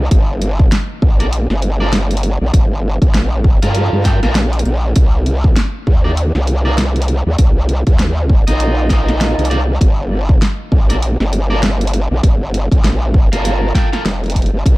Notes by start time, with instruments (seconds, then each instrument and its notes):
0.11 wobble bass G1, kick, closed hi-hat
0.42 closed hi-hat
0.59 kick
0.72 snare, closed hi-hat
1.02 wobble bass A#1, kick
1.20 clean electric guitar F4 A4 A#4 D5, closed hi-hat
1.33 closed hi-hat
1.50 wobble bass G1, snare
1.62 closed hi-hat
1.80 clean electric guitar F4 A4 A#4 D5
1.93 snare, closed hi-hat
2.11 closed hi-hat
2.17 closed hi-hat
2.23 closed hi-hat
2.41 wobble bass A#1
2.54 wobble bass G1, kick, closed hi-hat
3.02 wobble bass A#1, kick, closed hi-hat
3.14 snare, closed hi-hat
3.44 kick
3.62 wobble bass G2, clean electric guitar F4 A4 A#4 F5, closed hi-hat
3.75 closed hi-hat
3.93 wobble bass G2
4.05 clean electric guitar F4 A4 A#4 G5, kick, snare, closed hi-hat
4.23 wobble bass A#1, clean electric guitar F4 A4 A#4 F5, snare, closed hi-hat
4.35 snare, closed hi-hat
4.53 closed hi-hat
4.59 closed hi-hat
4.65 wobble bass A#1, closed hi-hat
4.96 wobble bass C2, kick, closed hi-hat
5.26 closed hi-hat
5.44 kick
5.56 snare, closed hi-hat
5.87 wobble bass D#2, kick
6.04 clean electric guitar D#4 F4 A#4 D5
6.17 closed hi-hat
6.35 wobble bass C2, snare
6.47 closed hi-hat
6.65 clean electric guitar D#4 F4 A#4 D5
6.78 snare, closed hi-hat
6.96 closed hi-hat
7.02 closed hi-hat
7.08 closed hi-hat
7.26 wobble bass D#2
7.38 wobble bass C2, kick, closed hi-hat
7.69 closed hi-hat
7.87 wobble bass D#2, kick, closed hi-hat
7.99 snare, closed hi-hat
8.29 kick
8.47 wobble bass A#1, clean electric guitar D#4 F4 A#4 D#5, closed hi-hat
8.60 closed hi-hat
8.90 clean electric guitar D#4 F4 A#4 D#5, kick, snare, closed hi-hat
9.08 snare, closed hi-hat
9.21 snare, closed hi-hat
9.39 wobble bass C2, closed hi-hat
9.45 closed hi-hat
9.50 clean electric guitar D#4 F4 A#4 D5, closed hi-hat
9.81 wobble bass G1, kick, closed hi-hat
10.29 kick
10.42 snare, closed hi-hat
10.72 wobble bass A#1, kick
10.89 clean electric guitar F4 A4 A#4 D5, closed hi-hat
11.02 closed hi-hat
11.20 wobble bass G1, snare
11.33 closed hi-hat
11.50 clean electric guitar F4 A4 A#4 D5
11.63 snare, closed hi-hat
11.81 closed hi-hat
11.87 closed hi-hat
11.94 closed hi-hat
12.11 wobble bass A#1
12.23 wobble bass G1, kick, closed hi-hat
12.54 closed hi-hat
12.72 wobble bass A#1, kick, closed hi-hat
12.84 snare, closed hi-hat
13.14 kick
13.32 wobble bass G1, clean electric guitar F4 A4 A#4 F5, closed hi-hat
13.45 closed hi-hat
13.75 clean electric guitar F4 A4 A#4 G5, kick, snare, closed hi-hat
13.92 clean electric guitar F4 A4 A#4 F5, snare, closed hi-hat
14.05 wobble bass F1, snare, closed hi-hat
14.24 closed hi-hat
14.26 closed hi-hat
14.30 closed hi-hat
14.32 kick, closed hi-hat
14.36 closed hi-hat
14.42 closed hi-hat
14.46 closed hi-hat
14.53 wobble bass G1
14.66 wobble bass C2, kick, closed hi-hat